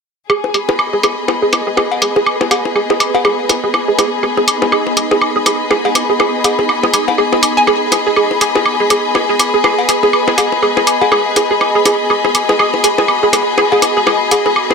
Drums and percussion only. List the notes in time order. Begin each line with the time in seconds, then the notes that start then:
0.30 low woodblock
0.44 high bongo
0.54 closed hi-hat, low woodblock
0.69 high bongo
0.79 low woodblock
1.03 closed hi-hat, high bongo, low woodblock
1.28 high bongo, low woodblock
1.53 closed hi-hat, high bongo, low woodblock
1.77 high bongo, low woodblock
1.92 cowbell
2.02 closed hi-hat, low woodblock
2.16 high bongo
2.26 low woodblock
2.41 high bongo
2.51 closed hi-hat, cowbell, low woodblock
2.65 high bongo
2.76 low woodblock
2.90 high bongo
3.00 closed hi-hat, low woodblock
3.15 cowbell
3.25 high bongo, low woodblock
3.49 closed hi-hat, high bongo, low woodblock
3.74 high bongo, low woodblock
3.99 closed hi-hat, high bongo, low woodblock
4.23 low woodblock
4.37 high bongo
4.48 closed hi-hat, low woodblock
4.62 high bongo
4.72 low woodblock
4.87 high bongo
4.97 closed hi-hat, low woodblock
5.11 high bongo
5.22 low woodblock
5.46 closed hi-hat, high bongo, low woodblock
5.71 high bongo, low woodblock
5.85 cowbell
5.95 closed hi-hat, high bongo, low woodblock
6.20 high bongo, low woodblock
6.44 closed hi-hat, cowbell, low woodblock
6.59 high bongo
6.69 low woodblock
6.83 high bongo
6.94 closed hi-hat, low woodblock
7.08 cowbell, high bongo
7.18 low woodblock
7.33 high bongo
7.43 closed hi-hat, low woodblock
7.67 high bongo, low woodblock
7.92 closed hi-hat, high bongo, low woodblock
8.16 low woodblock
8.31 high bongo
8.41 closed hi-hat, low woodblock
8.55 high bongo
8.66 low woodblock
8.90 closed hi-hat, high bongo, low woodblock
9.15 high bongo, low woodblock
9.39 closed hi-hat, high bongo, low woodblock
9.64 high bongo, low woodblock
9.79 cowbell
9.89 closed hi-hat, low woodblock
10.03 high bongo
10.13 low woodblock
10.28 high bongo
10.38 closed hi-hat, cowbell, low woodblock
10.52 high bongo
10.63 low woodblock
10.77 high bongo
10.87 closed hi-hat, low woodblock
11.01 cowbell
11.12 high bongo, low woodblock
11.36 closed hi-hat, high bongo, low woodblock
11.61 high bongo, low woodblock
11.85 closed hi-hat, high bongo, low woodblock
12.10 low woodblock
12.25 high bongo
12.35 closed hi-hat, low woodblock
12.49 high bongo
12.59 low woodblock
12.74 high bongo
12.84 closed hi-hat, low woodblock
12.98 high bongo
13.08 low woodblock
13.33 closed hi-hat, high bongo, low woodblock
13.58 high bongo, low woodblock
13.72 cowbell
13.82 closed hi-hat, high bongo, low woodblock
14.07 high bongo, low woodblock
14.31 closed hi-hat, cowbell, low woodblock
14.46 high bongo
14.56 low woodblock
14.70 high bongo